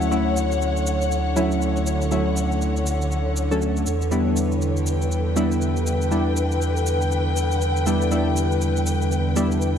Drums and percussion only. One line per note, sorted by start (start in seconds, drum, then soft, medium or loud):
0.02 shaker soft
0.12 shaker soft
0.37 shaker medium
0.52 shaker soft
0.62 shaker soft
0.77 shaker soft
0.87 shaker medium
1.02 shaker soft
1.12 shaker soft
1.37 shaker medium
1.52 shaker soft
1.62 shaker soft
1.77 shaker soft
1.87 shaker medium
2.02 shaker soft
2.12 shaker soft
2.37 shaker medium
2.52 shaker soft
2.62 shaker soft
2.77 shaker soft
2.87 shaker medium
3.02 shaker soft
3.12 shaker soft
3.37 shaker medium
3.52 shaker soft
3.62 shaker soft
3.77 shaker soft
3.87 shaker medium
4.02 shaker soft
4.12 shaker soft
4.37 shaker medium
4.52 shaker soft
4.62 shaker soft
4.77 shaker soft
4.87 shaker medium
5.02 shaker soft
5.12 shaker soft
5.37 shaker medium
5.52 shaker soft
5.62 shaker soft
5.77 shaker soft
5.87 shaker medium
6.02 shaker soft
6.12 shaker soft
6.37 shaker medium
6.52 shaker soft
6.62 shaker soft
6.77 shaker soft
6.87 shaker medium
7.02 shaker soft
7.12 shaker soft
7.37 shaker medium
7.52 shaker soft
7.62 shaker soft
7.77 shaker soft
7.87 shaker medium
8.02 shaker soft
8.12 shaker soft
8.36 shaker medium
8.52 shaker soft
8.62 shaker soft
8.77 shaker soft
8.87 shaker medium
9.02 shaker soft
9.12 shaker soft
9.36 shaker medium
9.52 shaker soft
9.62 shaker soft